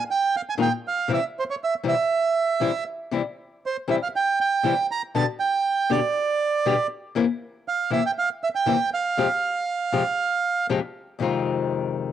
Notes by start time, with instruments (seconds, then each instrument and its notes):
0.11 bandoneon G5
0.36 bandoneon F5
0.49 bandoneon G#5
0.57 nylon-string guitar A#2 D#3 G#3 D#4 F4
0.62 bandoneon G5
0.88 bandoneon F5
1.08 nylon-string guitar C3 E3 G3 C4 E4
1.14 bandoneon E5
1.39 bandoneon C5
1.50 bandoneon C#5
1.64 bandoneon E5
1.83 nylon-string guitar C3 E3 G3 C4 E4
1.88 bandoneon E5
2.60 nylon-string guitar C3 E3 G3 C4 E4
3.11 nylon-string guitar C3 E3 G3 C4 E4
3.66 bandoneon C5
3.88 nylon-string guitar C3 E3 G3 C4 E4, bandoneon E5
4.03 bandoneon F5
4.16 bandoneon G5
4.41 bandoneon G5
4.63 nylon-string guitar C3 E3 G3 C4 E4
4.91 bandoneon A#5
5.15 nylon-string guitar B2 D3 G3 B3 G4, bandoneon A5
5.40 bandoneon G5
5.89 nylon-string guitar B2 D3 G3 B3 G4, bandoneon D5
6.66 nylon-string guitar B2 D3 G3 B3 G4
7.15 nylon-string guitar C3 E3 A#3 C4 E4
7.68 bandoneon F5
7.90 nylon-string guitar C3 E3 A#3 C4 E4, bandoneon E5
8.06 bandoneon G5
8.18 bandoneon F5
8.44 bandoneon E5
8.55 bandoneon G5
8.66 nylon-string guitar C3 E3 A#3 C4 E4
8.94 bandoneon F5
9.17 nylon-string guitar F2 C3 F3 G#3 C4 G4
9.92 nylon-string guitar F2 C3 F3 G#3 C4 G4
10.69 nylon-string guitar F2 C3 F3 G#3 C4 G4
11.19 nylon-string guitar F2 C3 D#3 G#3 C4 F4